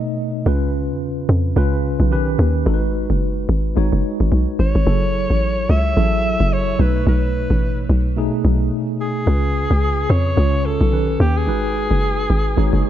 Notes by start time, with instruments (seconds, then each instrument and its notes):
Already playing: tine electric piano B2 A3 D#4 D#5
0.45 log drum bass C#2, tine electric piano C#3 C#4 F4 B4
0.90 log drum bass E2
1.29 log drum bass F2
1.55 log drum bass C#2, tine electric piano C#3 C#4 F4 B4
2.00 log drum bass B1
2.10 tine electric piano D#3 C#4 G4 B4
2.39 log drum bass D#2
2.65 log drum bass G#1, tine electric piano G#3 D#4 F#4 A4
2.74 tine electric piano B4
3.10 log drum bass F#1
3.49 log drum bass G#1
3.76 log drum bass G#1, tine electric piano G#3 D#4 F#4 C#5
3.93 log drum bass F#1
4.20 log drum bass G#1
4.32 log drum bass B1
4.59 log drum bass G#1, alto saxophone C#5
4.75 log drum bass G#1
4.86 log drum bass F#1, tine electric piano F#3 E4 G#4 A4
5.30 log drum bass A1
5.69 log drum bass C#2, alto saxophone E5
5.96 log drum bass A1, tine electric piano F#3 E4 G#4 A4
6.40 log drum bass F#1
6.53 alto saxophone C#5
6.78 log drum bass B1, tine electric piano B2 A3 D#4 C#5, alto saxophone B4
7.07 log drum bass B1, alto saxophone B4
7.50 log drum bass A1
7.90 log drum bass B1
8.16 tine electric piano B2 A3 D#4 G#4
8.45 log drum bass B1
9.01 alto saxophone G#4
9.26 log drum bass C#2, tine electric piano C#3 C#4 F4 B4
9.71 log drum bass C#2
10.10 log drum bass F2, alto saxophone C#5
10.36 log drum bass C#2, tine electric piano C#3 C#4 F4 C#5
10.66 alto saxophone A4
10.81 log drum bass B1
10.91 tine electric piano D#3 C#4 G4 B4
11.20 log drum bass D#2, alto saxophone G4
11.37 alto saxophone G#4
11.46 log drum bass G#1, tine electric piano G#3 D#4 F#4 B4
11.91 log drum bass F#1
12.30 log drum bass G#1
12.56 log drum bass G#1, tine electric piano G#3 D#4 F#4 C#5
12.73 log drum bass F#1